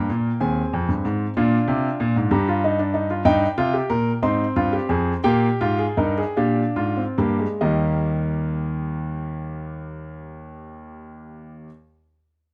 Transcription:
Already playing: A#3 A#4 G5
0.10 A#2
0.40 D#2 C4 G#4 G#5
0.73 F2
0.89 G2
1.05 G#2
1.37 A#2 D4 F4
1.68 C3
2.00 A#2
2.16 G#2
2.31 G2 G4 A#5
2.48 F4
2.64 D#4
2.79 D4
2.94 D#4
3.10 F4
3.25 G2 D#4 G5
3.58 C3 F4
3.74 G4
3.90 A#2 A#4
4.23 G#2 C4 D#4 C6
4.56 G2 F4
4.73 G4
4.89 F2 G#4
5.24 A#2 A#3 G4 G5
5.61 G#2 F4
5.78 G#4
5.97 G2 D#4 A#4
6.17 G#4
6.37 A#2 D4 G4 F5
6.76 G#2 F4
6.97 C4
7.18 G2 A#3 G4
7.39 G#3
7.61 D#2 D#3 G3 A#3 G4 D#5

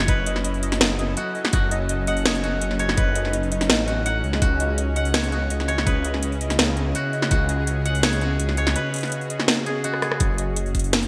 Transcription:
Already playing: F#1 F#3 C#4 E4 F#4 G#4 A4 C#5 D#5 F#5
0.08 B4, kick, closed hi-hat
0.26 closed hi-hat
0.36 snare
0.44 closed hi-hat
0.54 open hi-hat
0.63 closed hi-hat
0.72 snare, open hi-hat
0.80 F#1, snare, open hi-hat
0.99 closed hi-hat
1.17 F#4, closed hi-hat
1.35 open hi-hat
1.45 snare
1.53 F#1 F#4, kick, closed hi-hat
1.71 closed hi-hat
1.89 closed hi-hat
1.99 D#4
2.07 F#5, closed hi-hat
2.17 open hi-hat
2.25 C#5, snare, closed hi-hat
2.35 open hi-hat
2.43 F#4, closed hi-hat
2.61 F#1, closed hi-hat
2.71 snare
2.79 C#5, closed hi-hat
2.89 snare
2.97 B4, kick, closed hi-hat
3.15 closed hi-hat
3.25 snare
3.33 closed hi-hat
3.43 open hi-hat
3.52 closed hi-hat
3.61 snare, open hi-hat
3.70 A1, snare, open hi-hat
3.87 F#4, closed hi-hat
4.06 F#5, closed hi-hat
4.24 C#2, open hi-hat
4.33 snare
4.42 C#2 C#3 F#4, kick, closed hi-hat
4.60 closed hi-hat
4.78 closed hi-hat
4.96 F#5, closed hi-hat
5.05 open hi-hat
5.14 C#5, snare, closed hi-hat
5.24 E4, open hi-hat
5.32 F#4, closed hi-hat
5.46 C#2 G#4
5.50 closed hi-hat
5.60 snare
5.68 C#5, closed hi-hat
5.78 snare
5.86 B4, kick, closed hi-hat
6.05 closed hi-hat
6.14 snare
6.23 closed hi-hat
6.32 open hi-hat
6.41 closed hi-hat
6.50 snare, open hi-hat
6.59 C#2, snare, open hi-hat
6.77 closed hi-hat
6.95 F#4, closed hi-hat
7.13 open hi-hat
7.22 snare
7.31 C#2 F#4, kick, closed hi-hat
7.49 closed hi-hat
7.67 closed hi-hat
7.84 F#4 F#5, closed hi-hat
7.95 open hi-hat
8.03 C#5, snare, closed hi-hat
8.13 open hi-hat
8.21 F#4, closed hi-hat
8.39 C#2, closed hi-hat
8.49 snare
8.57 C#5, closed hi-hat
8.67 snare
8.76 B4, closed hi-hat
8.94 closed hi-hat
8.96 closed hi-hat
9.03 snare, closed hi-hat
9.05 closed hi-hat
9.08 closed hi-hat
9.10 closed hi-hat
9.12 closed hi-hat
9.21 open hi-hat
9.30 closed hi-hat
9.40 snare
9.48 snare, open hi-hat
9.66 G#4, closed hi-hat
9.84 F#4, closed hi-hat
9.94 cross-stick
10.02 G#4, cross-stick, open hi-hat
10.12 cross-stick
10.20 F#1 F#3, kick, closed hi-hat
10.25 C#4
10.38 closed hi-hat
10.47 A4
10.56 closed hi-hat
10.66 open hi-hat
10.75 kick, closed hi-hat
10.79 closed hi-hat
10.84 open hi-hat
10.93 snare, closed hi-hat
11.03 open hi-hat

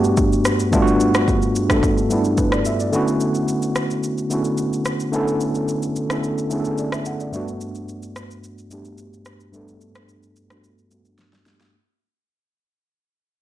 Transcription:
Already playing: G2 A3 B3 D4 F#4
0.00 G4
0.04 shaker
0.17 kick, shaker
0.33 shaker
0.45 cross-stick, shaker
0.60 shaker
0.72 G2 A3 B3 D4 F4, kick, shaker
0.82 F#4
0.87 shaker
1.00 shaker
1.14 cross-stick, shaker
1.28 kick, shaker
1.42 shaker
1.56 shaker
1.69 G2 A3 B3 D4 A4, kick, cross-stick, shaker
1.83 kick, shaker
1.98 shaker
2.09 G2 A3 B3 D4 E4, shaker
2.24 shaker
2.38 B4, kick, shaker
2.52 D5, cross-stick, shaker
2.65 E5, shaker
2.80 D5, shaker
2.92 D3 A3 B3 C#4 E4 F#4, shaker
3.08 shaker
3.21 shaker
3.35 shaker
3.48 shaker
3.62 shaker
3.76 cross-stick, shaker
3.90 shaker
4.03 shaker
4.18 shaker
4.30 D3 A3 B3 C#4 E4 F#4, shaker
4.44 shaker
4.58 shaker
4.73 shaker
4.85 cross-stick, shaker
5.00 shaker
5.12 D3 A3 B3 C#4 E4 A4, shaker
5.28 shaker
5.41 shaker
5.55 shaker
5.68 shaker
5.82 shaker
5.96 shaker
6.09 D3 A3 B3 C#4 E4 A4, cross-stick, shaker
6.24 shaker
6.38 shaker
6.50 D3 A3 B3 C#4 E4 G#4, shaker
6.60 A4
6.65 shaker
6.78 D5, shaker
6.92 E5, cross-stick, shaker
7.05 F#5, shaker
7.20 D5, shaker
7.32 G2 A3 B3 D4 F#4, shaker
7.48 shaker
7.61 shaker
7.75 shaker
7.89 shaker
8.03 shaker
8.16 cross-stick, shaker
8.31 shaker
8.44 shaker
8.58 shaker
8.70 G2 A3 B3 D4 G4, shaker
8.85 shaker
8.98 shaker
9.13 shaker
9.26 cross-stick, shaker
9.40 shaker
9.52 G2 A3 B3 D4 A4, shaker
9.68 shaker
9.81 shaker
9.95 cross-stick, shaker
10.09 shaker
10.23 shaker
10.36 shaker
10.49 G2 A3 B3 D4 F#4, cross-stick, shaker
10.64 shaker
10.78 shaker
10.90 G2 A3 B3 D4 F#4, shaker
11.05 shaker
11.18 snare, shaker
11.33 snare, shaker
11.45 G2 A3 B3 D4 G4, snare, shaker
11.60 snare, shaker

